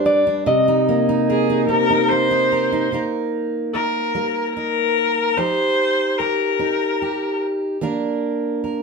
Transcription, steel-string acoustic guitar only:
0.00 0.46 G2 medium
0.00 2.74 G3 medium
0.00 0.26 D4 medium
0.06 0.42 B4 medium
0.27 0.47 D4 medium
0.46 1.67 C3 medium
0.68 1.08 D#4 medium
0.89 2.10 A#3 medium
1.09 1.48 D#4 medium
1.30 2.51 A#4 medium
1.50 1.89 D#4 medium
1.69 2.91 C3 medium
1.90 2.30 D#4 medium
2.11 2.92 A#3 medium
2.31 2.71 D#4 medium
2.52 2.88 A#4 medium
2.72 2.88 D#4 medium
2.92 3.66 C3 medium
2.92 4.14 A#3 soft
2.92 3.74 D#4 medium
2.92 5.33 A#4 medium
3.75 4.56 D#4 soft
4.15 4.88 G3 medium
4.15 5.37 A#3 soft
4.57 5.37 D#4 soft
5.37 6.10 F3 medium
5.37 6.60 D#4 medium
5.37 6.19 G4 medium
6.20 7.02 G4 medium
6.59 7.32 C4 medium
6.59 7.77 D#4 medium
7.02 7.83 G4 medium
7.81 8.54 D#3 medium
7.81 8.82 A#3 medium
7.81 8.82 D4 medium
7.81 8.63 A#4 medium
8.64 8.82 A#4 soft

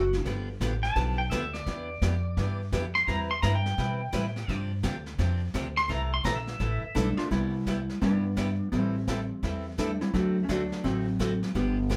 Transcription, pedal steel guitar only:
0.00 0.24 F#4 loud
0.83 1.17 A5 loud
1.18 1.31 G5 medium
1.30 1.53 E5 medium
1.54 2.56 D5 medium
2.95 3.07 C6 loud
3.07 3.19 A#5 loud
3.31 3.42 C6 medium
3.42 3.54 A#5 loud
3.55 4.57 G5 loud
5.77 5.89 C6 loud
5.90 6.01 A#5 loud
6.14 6.25 C6 medium
6.25 6.37 A#5 medium
6.36 7.28 E5 loud

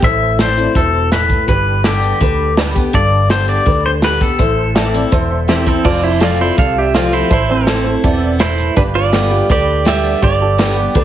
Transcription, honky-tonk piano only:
0.03 0.27 E4 medium
0.03 0.27 A4 medium
0.03 0.27 C5 medium
0.40 0.64 E4 medium
0.40 0.64 A4 medium
0.40 0.64 D5 medium
0.75 0.99 E4 medium
0.75 1.00 A4 medium
0.75 1.00 C5 medium
1.12 1.36 E4 medium
1.12 1.36 A4 medium
1.12 1.36 B4 medium
1.48 1.73 D4 medium
1.48 1.73 G4 medium
1.48 1.72 B4 medium
1.85 2.09 D4 medium
1.85 2.09 G4 medium
1.85 2.09 A4 medium
2.22 2.46 D4 medium
2.22 2.46 G4 medium
2.22 2.46 B4 medium
2.58 2.82 D4 medium
2.58 2.82 G4 medium
2.58 2.82 B4 medium
2.94 3.18 D4 medium
2.94 3.18 G4 medium
2.94 3.18 A4 medium
3.30 3.54 D4 medium
3.30 3.55 G4 medium
3.30 3.55 A4 medium
3.67 3.91 D4 medium
3.67 3.91 G4 medium
3.67 3.91 B4 medium
4.04 4.28 D4 medium
4.04 4.28 G4 medium
4.04 4.28 B4 medium
4.39 4.64 E4 medium
4.39 4.64 A4 medium
4.39 4.64 C5 medium
4.75 5.00 E4 medium
4.75 5.00 A4 medium
4.75 5.00 D5 medium
5.12 5.37 E4 medium
5.12 5.37 A4 medium
5.12 5.37 C5 medium
5.31 5.48 E5 medium
5.48 5.73 E4 medium
5.48 5.73 A4 medium
5.48 5.73 C5 medium
5.48 5.66 G5 medium
5.67 5.84 A5 medium
5.85 5.97 F4 medium
5.85 5.97 A4 medium
5.85 5.97 C5 loud
6.03 6.16 F4 medium
6.03 6.16 A4 medium
6.03 6.16 D5 medium
6.21 6.46 F4 medium
6.21 6.46 A4 medium
6.21 6.46 D5 medium
6.58 6.83 F4 medium
6.58 6.82 A4 medium
6.58 6.82 D5 medium
6.95 7.19 F4 medium
6.95 7.19 A4 medium
6.95 7.19 C5 medium
7.30 7.43 E4 medium
7.30 7.43 A4 medium
7.30 7.43 C5 medium
7.50 7.62 E4 medium
7.50 7.62 A4 medium
7.50 7.62 C5 medium
7.67 7.92 E4 medium
7.67 7.92 A4 medium
7.67 7.92 C5 medium
8.04 8.28 E4 medium
8.04 8.28 A4 medium
8.04 8.29 D5 medium
8.41 8.65 E4 medium
8.41 8.65 A4 medium
8.41 8.65 B4 medium
8.77 8.89 D4 medium
8.77 8.89 G4 medium
8.77 8.89 B4 loud
8.96 9.08 D4 medium
8.96 9.08 G4 medium
8.96 9.08 B4 medium
9.13 9.38 D4 medium
9.13 9.38 G4 medium
9.13 9.38 B4 medium
9.50 9.74 D4 medium
9.50 9.74 G4 medium
9.50 9.74 B4 medium
9.86 10.11 D4 medium
9.86 10.11 G4 medium
9.86 10.11 D5 medium
10.22 10.35 D4 medium
10.22 10.35 G4 medium
10.22 10.35 D5 loud
10.41 10.53 D4 medium
10.41 10.53 G4 medium
10.41 10.53 A4 medium
10.60 10.84 D4 medium
10.60 10.84 G4 medium
10.60 10.84 B4 medium
10.95 11.04 D4 medium
10.95 11.04 G4 medium
10.95 11.04 B4 medium

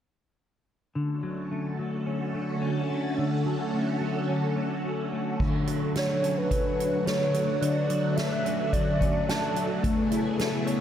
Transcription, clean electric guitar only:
0.95 3.17 D3 medium
1.23 1.78 F#3 soft
1.51 2.34 A3 soft
1.79 3.45 F#3 soft
2.06 2.61 C#4 medium
2.34 2.89 A3 soft
2.62 4.29 C#4 medium
2.90 3.73 A3 soft
3.18 5.40 D3 medium
3.46 4.00 F#3 soft
3.73 4.56 A3 soft
4.01 5.67 F#3 medium
4.29 4.84 C#4 medium
4.56 5.12 A3 soft
4.84 6.22 C#4 medium
5.12 5.95 A3 soft
5.40 7.60 D3 medium
5.68 6.49 F#3 medium
5.96 7.06 A3 medium
6.22 7.64 C#4 medium
6.51 7.33 F#3 medium
7.06 8.16 A3 medium
7.34 7.88 F#3 medium
7.61 9.82 D3 medium
7.89 8.72 F#3 medium
8.16 9.28 A3 soft
8.45 9.00 C#4 medium
8.73 9.54 F#3 medium
9.00 10.39 C#4 medium
9.28 9.83 A3 medium
9.55 9.89 F#3 medium
9.83 10.81 A3 medium
10.12 10.81 E4 medium
10.39 10.81 G#4 soft
10.67 10.81 C#5 medium

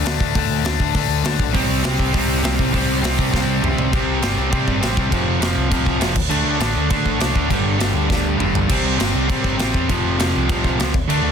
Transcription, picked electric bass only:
0.04 0.18 D2 medium
0.20 0.33 D2 medium
0.35 0.48 D2 medium
0.49 0.63 D2 medium
0.64 0.78 D2 medium
0.79 0.93 D2 medium
0.95 1.08 D2 loud
1.09 1.22 D2 medium
1.24 1.38 D2 loud
1.39 1.52 B1 medium
1.54 1.67 C2 loud
1.69 1.82 C2 medium
1.85 1.98 C2 medium
1.99 2.12 C2 medium
2.14 2.27 C2 medium
2.28 2.42 C2 medium
2.43 2.56 C2 medium
2.59 2.72 C2 medium
2.74 2.87 C2 loud
2.88 3.01 C2 medium
3.03 3.16 C2 medium
3.19 3.32 C2 medium
3.33 3.46 C2 loud
3.46 3.60 C2 medium
3.62 3.76 C2 medium
3.76 3.93 C2 medium
3.93 4.06 C2 loud
4.07 4.20 C2 medium
4.23 4.35 G1 medium
4.37 4.50 C2 medium
4.52 4.65 C3 medium
4.67 4.80 G1 medium
4.82 4.94 A1 medium
4.97 5.10 C2 medium
5.12 5.25 F1 medium
5.27 5.39 F1 medium
5.41 5.54 F1 medium
5.56 5.69 C2 medium
5.71 5.96 C2 medium
6.00 6.13 F1 medium
6.15 6.28 D2 medium
6.31 6.43 D2 medium
6.45 6.58 D2 medium
6.60 6.73 A1 medium
6.75 6.88 D2 medium
6.90 7.03 D3 medium
7.05 7.18 A1 medium
7.19 7.32 C2 medium
7.35 7.48 D2 medium
7.50 7.63 G1 medium
7.64 7.77 G1 medium
7.79 7.92 G1 medium
7.93 8.06 D2 medium
8.10 8.35 D2 medium
8.38 8.51 G1 medium
8.52 8.66 G1 medium
8.69 8.82 C2 medium
8.83 8.96 C2 medium
8.99 9.12 G1 medium
9.13 9.26 C2 medium
9.29 9.42 C3 medium
9.44 9.57 G1 medium
9.59 9.72 A1 medium
9.75 9.91 E2 medium
9.90 10.02 F1 medium
10.05 10.17 F1 medium
10.19 10.31 F1 medium
10.36 10.47 C2 medium
10.49 10.74 C2 medium
10.79 10.91 C#2 medium
10.94 11.06 D2 medium
11.08 11.20 D2 medium
11.23 11.32 D2 medium

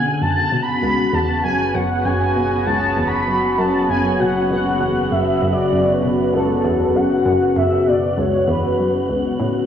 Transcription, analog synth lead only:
0.00 0.23 G#5 loud
0.21 0.64 A5 loud
0.62 1.15 B5 loud
1.14 1.43 A5 loud
1.44 1.76 G#5 loud
1.74 2.06 F#5 loud
2.05 2.68 G#5 loud
2.66 3.09 A5 loud
3.07 3.59 B5 loud
3.58 3.89 A5 loud
3.89 4.22 G#5 loud
4.20 4.50 F#5 medium
4.50 5.13 F#5 loud
5.11 5.54 E5 loud
5.52 5.95 D5 medium
5.93 6.33 B4 medium
6.34 6.97 A4 loud
6.95 7.58 F#5 loud
7.57 7.89 E5 loud
7.87 8.20 D5 medium
8.18 8.48 C#5 medium
8.48 9.66 B4 medium

